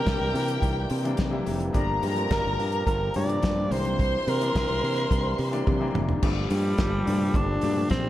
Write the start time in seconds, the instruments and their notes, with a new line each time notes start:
Already playing: french horn section A#2 E3 G3 C4 G4, grand piano C3 E3 G3 A#3 D4, string section G4 G5, alto saxophone A#4
0.06 fingered electric bass C2, kick, snare, closed hi-hat, high conga
0.20 fingered electric bass C2
0.33 grand piano C3 E3 G3 A#3 D4, fingered electric bass C3, open hi-hat
0.48 closed hi-hat
0.62 fingered electric bass C2, kick, closed hi-hat, muted conga
0.90 fingered electric bass C3, open hi-hat
1.03 grand piano C3 E3 G3 A#3 D4, closed hi-hat
1.17 fingered electric bass C3, kick, snare, closed hi-hat, high conga
1.31 grand piano C3 E3 G3 A#3 E4
1.46 fingered electric bass F1, open hi-hat, high conga
1.60 closed hi-hat, high conga
1.73 fingered electric bass G1, grand piano A#2 F3 G3 A3 D4, french horn section F3 D4, string section A#4 A#5, kick, closed hi-hat
2.03 fingered electric bass G2, open hi-hat, muted conga
2.15 grand piano A#2 F3 G3 A3 C4, closed hi-hat
2.31 fingered electric bass G1, alto saxophone A#4, kick, snare, closed hi-hat, high conga
2.45 fingered electric bass G1
2.58 fingered electric bass G2, grand piano A#2 F3 G3 A#3 D4, open hi-hat
2.72 closed hi-hat
2.87 fingered electric bass G1, alto saxophone A#4, kick, closed hi-hat, muted conga
3.14 fingered electric bass G2, alto saxophone D5, open hi-hat, low conga
3.27 grand piano A#2 F3 G3 A3 D4, closed hi-hat
3.42 fingered electric bass G2, kick, snare, closed hi-hat, high conga
3.55 grand piano A#2 F3 G3 A3 D4
3.69 fingered electric bass C2, grand piano C3 D#3 G3 A#3 D4, french horn section E3 C4, alto saxophone C5, string section C5 C6, open hi-hat, high conga
3.76 grand piano E3
3.85 closed hi-hat, high conga
3.99 kick, closed hi-hat
4.27 fingered electric bass C3, alto saxophone A#4, open hi-hat, muted conga
4.40 grand piano C3 E3 G3 A#3 D4, closed hi-hat
4.55 fingered electric bass C2, kick, snare, closed hi-hat, high conga
4.69 fingered electric bass C2
4.82 grand piano C3 E3 G3 A#3 D4, fingered electric bass C3, open hi-hat
4.96 closed hi-hat
5.11 fingered electric bass C2, kick, closed hi-hat, muted conga
5.38 fingered electric bass C3, open hi-hat
5.51 grand piano C3 E3 G3 A#3 D4, closed hi-hat
5.67 fingered electric bass C3, kick, high tom, high conga
5.80 grand piano C3 E3 G3 A#3 D4
5.95 fingered electric bass F1, mid tom, high conga
6.09 floor tom, high conga
6.22 fingered electric bass G1, grand piano A#2 F3 G3 A3 D4, french horn section A#2 F3 G3 D4 G4, alto saxophone G3, kick, crash, muted conga
6.50 fingered electric bass G2, open hi-hat, muted conga
6.78 fingered electric bass G1, kick, snare, closed hi-hat, high conga
7.05 fingered electric bass G2, grand piano A#2 F3 G3 A3 D4, open hi-hat, low conga
7.34 fingered electric bass G1, alto saxophone D4, kick, closed hi-hat, muted conga
7.61 fingered electric bass G2, grand piano A#2 F3 G3 A3 D4, open hi-hat, low conga
7.75 grand piano A#2 F3 G3 A3 D4
7.90 fingered electric bass A#1, alto saxophone C4, kick, snare, closed hi-hat, high conga
8.03 grand piano A#2 F3 G3 A3 D4